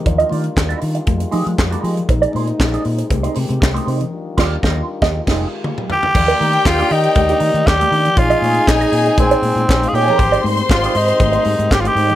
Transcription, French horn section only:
0.00 1.05 D#3 medium
0.06 1.06 G3 medium
0.06 1.07 D4 medium
0.06 2.07 F4 medium
1.07 2.08 D#3 medium
1.07 2.08 G3 medium
1.07 2.08 G#3 medium
2.09 3.10 C3 medium
2.09 4.10 G#3 medium
2.09 3.10 A#3 medium
2.09 3.10 D#4 medium
3.11 5.98 D#3 medium
3.11 4.11 C4 medium
3.11 4.11 G4 medium
4.11 5.12 G3 medium
4.11 5.12 D4 medium
4.11 5.98 F4 medium
5.13 5.98 G#3 medium
5.13 5.98 G4 medium
6.15 8.15 D#3 medium
6.15 8.15 A#3 medium
6.15 8.15 G4 medium
6.15 8.15 D5 medium
8.17 10.17 C#3 medium
8.17 12.15 G#3 medium
8.17 12.15 C4 medium
8.17 10.17 D#4 medium
10.20 12.15 D#3 medium
10.20 12.15 G4 medium

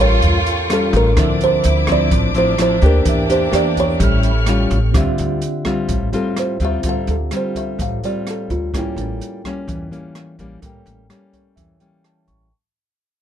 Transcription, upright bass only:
0.00 0.20 A1 medium
0.23 0.90 E2 medium
0.93 1.15 A1 loud
1.17 1.61 D2 medium
1.65 2.09 D2 loud
2.11 2.79 A1 medium
2.82 3.04 D2 loud
3.06 3.50 E2 medium
3.53 3.97 E2 loud
4.00 4.67 A1 medium
4.71 4.93 A1 loud
4.94 5.06 D2 medium
5.19 5.41 D2 medium
5.89 6.11 A1 medium
6.60 6.82 D2 medium
6.83 6.95 D2 medium
7.08 7.30 D2 medium
7.79 8.01 A1 medium
8.50 8.72 D2 medium
8.74 8.85 A1 medium
8.96 9.19 A1 medium
9.68 9.90 E2 medium
10.39 10.61 A1 medium
10.62 10.73 A1 medium
10.86 11.08 A1 medium
11.57 11.79 E2 medium
12.28 12.50 A1 medium

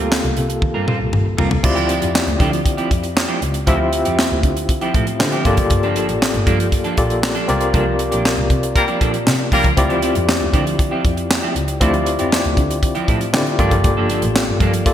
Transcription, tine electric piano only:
0.00 1.59 A#3 medium
0.00 1.60 F4 medium
0.00 1.60 G4 medium
0.00 1.60 A4 medium
1.63 3.63 C4 medium
1.63 3.63 E4 medium
1.63 3.63 F4 medium
1.63 3.64 G4 medium
1.63 3.64 D5 medium
3.67 5.17 C4 medium
3.67 5.17 E4 medium
3.67 5.17 F4 medium
3.67 5.17 G4 medium
3.67 5.17 E5 medium
5.20 5.45 C4 medium
5.20 5.45 E4 medium
5.20 5.44 F4 medium
5.20 5.44 G4 medium
5.20 5.46 C5 medium
5.45 6.94 A#3 medium
5.45 6.95 F4 medium
5.45 6.95 G4 medium
5.45 6.95 A4 medium
5.45 6.95 D5 medium
6.97 7.48 A#3 medium
6.97 7.47 F4 medium
6.97 7.48 G4 medium
6.97 7.49 A4 medium
6.97 7.48 D5 medium
7.48 9.48 C4 medium
7.48 9.48 F4 medium
7.48 9.48 G4 medium
7.48 9.48 A#4 medium
7.48 9.48 D5 medium
9.77 11.76 C4 medium
9.77 11.77 E4 medium
9.77 11.77 F4 medium
9.77 11.77 G4 medium
9.77 11.77 D5 medium
11.80 13.30 C4 medium
11.80 13.30 E4 medium
11.80 13.30 F4 medium
11.80 13.31 G4 medium
11.80 13.31 D5 medium
13.33 13.59 C4 medium
13.33 13.59 E4 medium
13.33 13.58 F4 medium
13.33 13.58 G4 medium
13.33 13.59 D5 medium
13.58 14.83 A#3 medium
13.58 14.83 F4 medium
13.58 14.84 G4 medium
13.58 14.84 A4 medium
13.58 14.84 D5 medium
14.86 14.94 A#3 medium
14.86 14.94 F4 medium
14.86 14.94 G4 medium
14.86 14.94 A4 medium
14.86 14.94 D5 medium

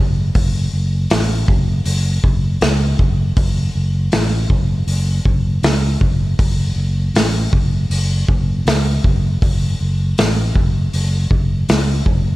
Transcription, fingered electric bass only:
0.00 0.30 F#1 medium
0.36 0.68 F#1 medium
0.73 1.05 F#1 medium
1.11 1.43 A1 medium
1.48 1.80 F#1 medium
1.86 2.18 F#1 medium
2.24 2.56 F#1 medium
2.61 2.93 C#2 medium
2.99 3.31 F#1 medium
3.37 3.69 F#1 medium
3.75 4.07 F#1 medium
4.13 4.45 A1 medium
4.50 4.82 F#1 medium
4.87 5.20 F#1 medium
5.25 5.58 F#1 medium
5.63 5.95 C#2 medium
6.01 6.33 F#1 medium
6.39 6.71 F#1 medium
6.76 7.08 F#1 medium
7.14 7.47 A1 medium
7.53 7.85 F#1 medium
7.90 8.22 F#1 medium
8.29 8.60 F#1 medium
8.66 8.98 C#2 medium
9.05 9.36 F#1 medium
9.42 9.74 F#1 medium
9.81 10.12 F#1 medium
10.18 10.50 A1 medium
10.56 10.88 F#1 medium
10.94 11.25 F#1 medium
11.31 11.63 F#1 medium
11.69 12.01 C#2 medium
12.07 12.36 F#1 medium

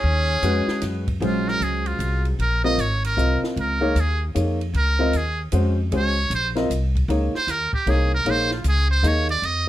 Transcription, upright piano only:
0.43 1.03 G#3 medium
0.43 1.03 C#4 medium
0.43 1.03 F#4 medium
0.43 1.03 B4 medium
1.21 2.31 F#3 medium
1.21 2.31 G#3 medium
1.21 2.31 C#4 medium
1.21 2.31 C5 medium
2.64 2.77 C4 medium
2.64 2.77 F4 medium
2.64 2.77 A#4 medium
2.64 2.77 D#5 medium
3.17 3.77 C4 medium
3.17 3.77 F4 medium
3.17 3.77 A#4 medium
3.17 3.77 D#5 medium
3.81 3.94 A#3 medium
3.81 3.94 D#4 medium
3.81 3.94 G#4 medium
3.81 3.94 C#5 medium
4.35 4.58 A#3 medium
4.35 4.58 D#4 medium
4.35 4.58 G#4 medium
4.35 4.58 C#5 medium
4.99 5.12 C4 medium
4.99 5.12 F4 medium
4.99 5.12 A#4 medium
4.99 5.12 D#5 medium
5.52 5.75 G#3 medium
5.52 5.75 C#4 medium
5.52 5.76 F#4 medium
5.52 5.76 C5 medium
5.92 6.15 G#3 medium
5.92 6.15 C#4 medium
5.92 6.15 F#4 medium
5.92 6.15 C5 medium
6.55 6.68 C4 medium
6.55 6.68 F4 medium
6.55 6.68 A#4 medium
6.55 6.69 D#5 medium
7.09 7.32 A#3 medium
7.09 7.32 D#4 medium
7.09 7.32 G#4 medium
7.09 7.32 C#5 medium
7.87 8.10 A#3 medium
7.87 8.10 D#4 medium
7.87 8.10 G#4 medium
7.87 8.10 C#5 medium
8.26 8.49 A#3 medium
8.26 8.49 D#4 medium
8.26 8.49 G#4 medium
8.26 8.49 C#5 medium
9.03 9.26 A#3 medium
9.03 9.27 D#4 medium
9.03 9.27 G#4 medium
9.03 9.27 D#5 medium

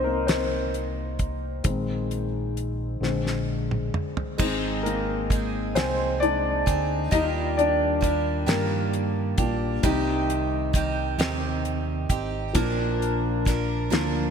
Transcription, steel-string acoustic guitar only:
4.38 5.29 G#3 medium
4.38 5.29 C4 medium
4.38 5.31 D#4 medium
4.38 5.31 G#4 medium
5.30 5.76 G#3 soft
5.30 5.76 C4 soft
5.30 5.75 D#4 soft
5.30 5.74 G#4 soft
5.75 6.67 G#3 soft
5.75 6.67 C4 soft
5.75 6.67 D#4 medium
5.75 6.65 G#4 medium
6.66 7.11 C4 soft
6.66 7.12 D#4 soft
6.66 7.12 G#4 soft
7.11 8.06 D#3 medium
7.11 8.00 G3 medium
7.11 8.01 A#3 medium
7.11 8.01 D4 medium
7.11 8.03 G4 medium
8.01 8.47 G3 medium
8.01 8.46 A#3 medium
8.01 8.45 D4 medium
8.01 8.45 G4 medium
8.46 9.42 D#3 soft
8.46 9.83 G3 soft
8.46 9.38 A#3 soft
8.46 9.38 D4 medium
8.46 9.37 G4 medium
9.38 9.84 A#3 soft
9.38 9.84 D4 soft
9.38 9.83 G4 soft
9.83 10.74 C3 medium
9.83 10.72 D#3 medium
9.83 10.73 C4 medium
9.83 10.74 D#4 medium
9.83 10.74 G4 medium
10.73 11.19 D#3 medium
10.73 11.18 C4 medium
10.73 11.18 D#4 medium
10.73 11.17 G4 medium
11.19 12.10 C3 soft
11.19 12.10 D#3 medium
11.19 12.10 C4 medium
11.19 12.09 D#4 medium
11.19 12.08 G4 medium
12.09 12.55 C4 soft
12.09 12.56 D#4 soft
12.09 12.55 G4 medium
12.55 13.46 A#2 medium
12.55 13.44 F3 medium
12.55 13.45 A#3 medium
12.55 13.46 D4 medium
12.55 13.47 A#4 medium
13.45 13.91 F3 medium
13.45 13.90 A#3 medium
13.45 13.90 D4 medium
13.45 13.89 A#4 medium
13.90 14.30 A#2 soft
13.90 14.30 F3 medium
13.90 14.30 A#3 medium
13.90 14.30 D4 medium
13.90 14.30 A#4 medium

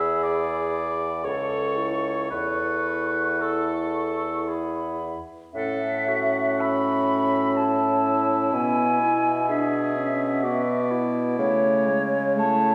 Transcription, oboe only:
0.00 0.25 E5 medium
0.23 1.26 D5 medium
1.25 2.30 C#5 medium
2.30 3.43 B4 medium
3.41 4.48 A4 medium
5.56 6.61 F#5 medium
6.59 8.53 E5 medium
8.53 10.45 E5 medium
10.44 12.09 D5 medium
12.37 12.75 C#5 medium

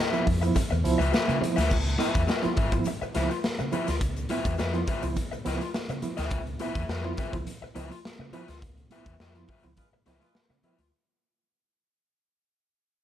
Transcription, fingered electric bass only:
0.28 0.51 F2 medium
0.71 0.82 E2 medium
0.85 0.98 C#2 medium
0.99 1.11 C#2 medium
1.29 1.40 C#3 medium
1.58 1.69 D2 medium
1.71 1.95 C#2 loud
2.15 2.26 E2 medium
2.45 muted fingered electric bass stroke soft
2.57 2.81 G#1 loud
3.02 muted fingered electric bass stroke medium
3.16 3.28 C#2 medium
3.60 3.71 C#3 loud
3.88 4.01 D2 medium
4.01 4.25 C#2 loud
4.45 4.56 E2 medium
4.60 4.83 F2 medium
5.04 5.14 C#2 medium
5.32 muted fingered electric bass stroke medium
5.46 5.58 C#2 medium
5.89 6.00 C#3 loud
6.18 6.31 D2 medium
6.31 6.55 C#2 loud
6.76 6.87 E2 medium
6.89 7.12 F2 medium
7.33 7.44 C#2 medium
7.62 muted fingered electric bass stroke medium
7.76 7.88 C#2 medium
8.19 8.31 C#3 loud
8.49 8.62 D2 medium
8.62 8.86 C#2 loud
9.06 9.17 E2 medium
9.20 9.44 F2 medium
9.64 9.75 C#2 medium
9.93 muted fingered electric bass stroke soft
10.06 10.19 C#2 medium
10.50 10.61 C#3 loud
10.79 10.90 D2 medium

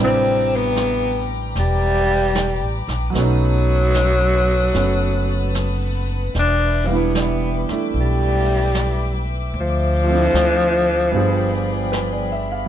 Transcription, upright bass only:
0.00 1.52 A1 medium
1.55 2.57 E1 medium
2.61 2.86 A1 soft
2.88 3.12 A#1 medium
3.14 4.70 B1 medium
4.74 6.31 F#1 medium
6.35 7.66 E1 medium
7.70 muted upright bass stroke soft
7.94 9.50 B1 medium
9.54 10.30 D2 medium
10.34 11.09 D2 medium
11.13 12.67 G1 medium

